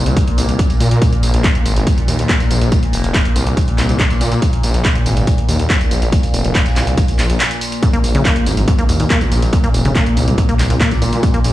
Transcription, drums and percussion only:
0.06 closed hi-hat, tambourine
0.17 kick, closed hi-hat, tambourine
0.28 closed hi-hat
0.38 open hi-hat, tambourine
0.49 closed hi-hat, tambourine
0.59 kick, closed hi-hat, tambourine
0.70 closed hi-hat, tambourine
0.80 open hi-hat, tambourine
0.91 closed hi-hat, tambourine
1.02 kick, closed hi-hat, tambourine
1.13 closed hi-hat
1.23 open hi-hat, tambourine
1.34 closed hi-hat, tambourine
1.44 kick, clap, closed hi-hat, tambourine
1.55 closed hi-hat
1.66 open hi-hat, tambourine
1.76 closed hi-hat, tambourine
1.87 kick, closed hi-hat, tambourine
1.98 closed hi-hat
2.08 open hi-hat, tambourine
2.19 closed hi-hat, tambourine
2.29 kick, clap, closed hi-hat, tambourine
2.40 closed hi-hat, tambourine
2.51 open hi-hat, tambourine
2.61 closed hi-hat, tambourine
2.72 kick, closed hi-hat, tambourine
2.83 closed hi-hat
2.93 open hi-hat, tambourine
3.04 closed hi-hat, tambourine
3.14 kick, clap, closed hi-hat, tambourine
3.25 closed hi-hat
3.36 open hi-hat, tambourine
3.47 closed hi-hat, tambourine
3.57 kick, closed hi-hat, tambourine
3.68 closed hi-hat
3.78 clap, open hi-hat, tambourine
3.89 closed hi-hat, tambourine
4.00 kick, clap, closed hi-hat, tambourine
4.10 closed hi-hat, tambourine
4.21 open hi-hat, tambourine
4.32 closed hi-hat, tambourine
4.42 kick, closed hi-hat, tambourine
4.53 closed hi-hat
4.63 open hi-hat, tambourine
4.74 closed hi-hat, tambourine
4.85 kick, clap, closed hi-hat, tambourine
4.95 closed hi-hat
5.06 open hi-hat, tambourine
5.17 closed hi-hat, tambourine
5.27 kick, closed hi-hat, tambourine
5.38 closed hi-hat
5.49 open hi-hat, tambourine
5.59 closed hi-hat
5.70 kick, clap, closed hi-hat, tambourine
5.81 closed hi-hat, tambourine
5.91 open hi-hat, tambourine
6.02 closed hi-hat, tambourine
6.12 kick, closed hi-hat, tambourine
6.23 closed hi-hat, tambourine
6.34 open hi-hat, tambourine
6.45 closed hi-hat, tambourine
6.55 kick, clap, closed hi-hat, tambourine
6.66 closed hi-hat, tambourine
6.76 clap, open hi-hat, tambourine
6.87 closed hi-hat, tambourine
6.97 kick, closed hi-hat, tambourine
7.08 closed hi-hat, tambourine
7.19 clap, open hi-hat, tambourine
7.30 closed hi-hat, tambourine
7.40 clap, closed hi-hat, tambourine
7.51 closed hi-hat, tambourine
7.61 open hi-hat, tambourine
7.72 closed hi-hat, tambourine
7.83 kick, closed hi-hat, tambourine
7.93 closed hi-hat
8.04 open hi-hat, tambourine
8.15 closed hi-hat, tambourine
8.25 kick, clap, closed hi-hat, tambourine
8.36 closed hi-hat
8.46 open hi-hat, tambourine
8.57 closed hi-hat, tambourine
8.68 kick, closed hi-hat, tambourine
8.79 closed hi-hat
8.89 open hi-hat, tambourine
9.00 closed hi-hat, tambourine
9.10 kick, clap, closed hi-hat, tambourine
9.21 closed hi-hat, tambourine
9.32 open hi-hat, tambourine
9.42 closed hi-hat, tambourine
9.53 kick, closed hi-hat, tambourine
9.64 closed hi-hat
9.74 open hi-hat, tambourine
9.85 closed hi-hat, tambourine
9.95 kick, clap, closed hi-hat, tambourine
10.06 closed hi-hat
10.17 open hi-hat, tambourine
10.28 closed hi-hat, tambourine
10.38 kick, closed hi-hat, tambourine
10.49 closed hi-hat
10.59 clap, open hi-hat, tambourine
10.70 closed hi-hat, tambourine
10.80 kick, clap, closed hi-hat, tambourine
10.91 closed hi-hat, tambourine
11.02 open hi-hat, tambourine
11.13 closed hi-hat, tambourine
11.23 kick, closed hi-hat, tambourine
11.34 closed hi-hat
11.44 open hi-hat, tambourine

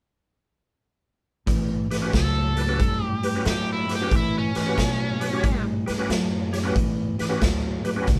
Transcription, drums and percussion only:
1.47 kick, closed hi-hat
1.91 snare, closed hi-hat
2.13 kick, snare, closed hi-hat
2.57 closed hi-hat
2.80 kick, closed hi-hat
3.23 closed hi-hat
3.45 snare, closed hi-hat
3.89 snare, closed hi-hat
4.11 kick, closed hi-hat
4.55 snare, closed hi-hat
4.78 kick, snare, closed hi-hat
5.21 closed hi-hat
5.44 kick, closed hi-hat
5.88 snare, closed hi-hat
6.10 snare, closed hi-hat
6.53 snare, closed hi-hat
6.76 kick, closed hi-hat
7.19 snare, closed hi-hat
7.41 kick, snare, closed hi-hat
7.85 closed hi-hat
8.07 kick, snare, closed hi-hat

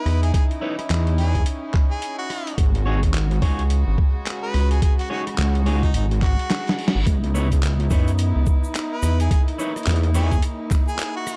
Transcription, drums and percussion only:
0.06 cross-stick, open hi-hat
0.23 closed hi-hat
0.34 kick, closed hi-hat
0.51 closed hi-hat
0.79 cross-stick, closed hi-hat
0.90 clap, closed hi-hat
1.07 closed hi-hat
1.18 open hi-hat
1.35 kick, closed hi-hat
1.46 closed hi-hat
1.74 kick, clap
2.02 closed hi-hat
2.30 cross-stick, open hi-hat
2.47 closed hi-hat
2.58 kick, closed hi-hat
2.75 closed hi-hat
3.03 kick, closed hi-hat
3.14 clap, closed hi-hat
3.31 closed hi-hat
3.42 kick, open hi-hat
3.59 closed hi-hat
3.70 closed hi-hat
3.98 kick
4.26 clap, closed hi-hat
4.54 cross-stick, open hi-hat
4.71 closed hi-hat
4.82 kick, closed hi-hat
4.99 closed hi-hat
5.01 closed hi-hat
5.05 closed hi-hat
5.06 closed hi-hat
5.08 closed hi-hat
5.27 cross-stick, closed hi-hat
5.29 cross-stick
5.34 cross-stick, clap, closed hi-hat
5.55 closed hi-hat
5.66 open hi-hat
5.83 kick, closed hi-hat
5.94 closed hi-hat
6.11 closed hi-hat
6.22 kick, clap
6.39 closed hi-hat
6.50 snare, clap, closed hi-hat
6.67 snare, closed hi-hat
6.79 open hi-hat
6.88 snare
7.06 kick, closed hi-hat, shaker
7.24 closed hi-hat
7.35 shaker
7.52 kick, closed hi-hat, shaker
7.63 clap, closed hi-hat, shaker
7.80 closed hi-hat
7.90 kick, open hi-hat, shaker
8.08 closed hi-hat, shaker
8.18 closed hi-hat, shaker
8.46 kick, shaker
8.64 shaker
8.75 clap, closed hi-hat, shaker
9.03 cross-stick, open hi-hat, shaker
9.20 closed hi-hat, shaker
9.31 kick, closed hi-hat, shaker
9.48 closed hi-hat
9.59 shaker
9.76 cross-stick, closed hi-hat, shaker
9.83 clap, closed hi-hat
9.87 closed hi-hat, shaker
9.92 closed hi-hat
9.96 closed hi-hat
10.03 closed hi-hat
10.14 open hi-hat, shaker
10.31 kick, closed hi-hat, shaker
10.42 closed hi-hat, shaker
10.71 kick, clap, shaker
10.88 shaker
10.99 clap, closed hi-hat, shaker
11.27 cross-stick, open hi-hat, shaker

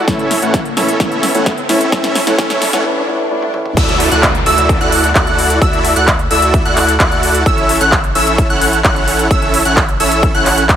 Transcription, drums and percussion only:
0.08 kick, snare, closed hi-hat
0.19 closed hi-hat
0.31 snare, open hi-hat
0.42 closed hi-hat
0.54 kick, snare, closed hi-hat
0.65 closed hi-hat
0.77 snare, open hi-hat
0.89 closed hi-hat
1.00 kick, snare, closed hi-hat
1.12 closed hi-hat
1.23 snare, open hi-hat
1.35 closed hi-hat
1.46 kick, snare, closed hi-hat
1.58 closed hi-hat
1.69 snare, open hi-hat
1.81 closed hi-hat
1.92 kick, snare, closed hi-hat
2.04 snare, closed hi-hat
2.15 snare, open hi-hat
2.27 snare, closed hi-hat
2.38 kick, snare, closed hi-hat
2.50 snare, closed hi-hat
2.62 snare, open hi-hat
2.73 snare, closed hi-hat
3.42 high tom
3.54 mid tom
3.65 mid tom
3.77 kick, closed hi-hat, crash
3.89 closed hi-hat
4.00 open hi-hat
4.12 closed hi-hat
4.23 kick, clap, closed hi-hat
4.35 closed hi-hat
4.46 open hi-hat
4.58 closed hi-hat
4.69 kick, closed hi-hat
4.81 closed hi-hat
4.92 open hi-hat
5.04 closed hi-hat
5.15 kick, clap, closed hi-hat
5.27 closed hi-hat
5.39 open hi-hat
5.50 closed hi-hat
5.62 kick, closed hi-hat
5.73 closed hi-hat
5.85 open hi-hat
5.96 closed hi-hat
6.08 kick, clap, closed hi-hat
6.19 closed hi-hat
6.31 open hi-hat
6.42 closed hi-hat
6.54 kick, closed hi-hat
6.65 closed hi-hat
6.77 clap, open hi-hat
6.88 closed hi-hat
7.00 kick, clap, closed hi-hat
7.12 closed hi-hat
7.23 open hi-hat
7.35 closed hi-hat
7.46 kick, closed hi-hat
7.58 closed hi-hat
7.69 open hi-hat
7.81 closed hi-hat
7.92 kick, clap, closed hi-hat
8.04 closed hi-hat
8.15 open hi-hat
8.27 closed hi-hat
8.38 kick, closed hi-hat
8.50 closed hi-hat
8.61 open hi-hat
8.73 closed hi-hat
8.84 kick, clap, closed hi-hat
8.96 closed hi-hat
9.08 open hi-hat
9.19 closed hi-hat
9.31 kick, closed hi-hat
9.42 closed hi-hat
9.54 open hi-hat
9.65 closed hi-hat
9.77 kick, clap, closed hi-hat
9.89 closed hi-hat
10.00 open hi-hat
10.12 closed hi-hat
10.23 kick, closed hi-hat
10.35 closed hi-hat
10.46 clap, open hi-hat
10.58 closed hi-hat
10.69 kick, clap, closed hi-hat

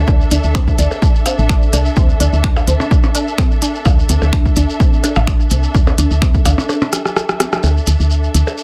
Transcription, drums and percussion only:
0.07 kick, percussion blips, shekere
0.21 shekere
0.31 open hi-hat, shekere
0.44 shekere
0.55 finger snap, kick, shekere
0.68 kick, shekere
0.78 open hi-hat, shekere
0.91 percussion blips, shekere
1.02 kick, shekere
1.15 shekere
1.26 open hi-hat, percussion blips, shekere
1.39 shekere
1.49 finger snap, kick, shekere
1.62 shekere
1.73 open hi-hat, percussion blips, shekere
1.85 shekere
1.96 kick, shekere
2.09 shekere
2.20 open hi-hat, shekere
2.33 shekere
2.44 finger snap, kick, shekere
2.56 percussion blips, shekere
2.67 open hi-hat, shekere
2.80 percussion blips, shekere
2.91 kick, shekere
3.03 percussion blips, shekere
3.15 open hi-hat, shekere
3.28 shekere
3.38 finger snap, kick, percussion blips, shekere
3.51 shekere
3.62 open hi-hat, shekere
3.75 shekere
3.85 kick, percussion blips, shekere
3.99 shekere
4.09 open hi-hat, shekere
4.22 percussion blips, shekere
4.33 finger snap, kick, shekere
4.45 kick, shekere
4.56 open hi-hat, shekere
4.69 shekere
4.80 kick, shekere
4.93 shekere
5.04 open hi-hat, percussion blips, shekere
5.15 percussion blips, shekere
5.27 finger snap, kick, shekere
5.40 shekere
5.50 open hi-hat, shekere
5.63 shekere
5.75 kick, shekere
5.87 percussion blips, shekere
5.98 open hi-hat, shekere
6.11 shekere
6.22 finger snap, kick, shekere
6.34 kick, shekere
6.45 open hi-hat, percussion blips, shekere
6.58 percussion blips, shekere
6.69 percussion blips, shekere
6.81 percussion blips, shekere
6.93 cross-stick, open hi-hat, shekere
7.05 cross-stick, shekere
7.16 cross-stick, shekere
7.29 cross-stick, shekere
7.40 cross-stick, open hi-hat, shekere
7.53 cross-stick, percussion blips, shekere
7.63 percussion blips, shekere
7.77 shekere
7.87 open hi-hat, shekere
8.00 shekere
8.10 shekere
8.24 shekere
8.34 open hi-hat, shekere
8.47 percussion blips, shekere
8.58 shekere

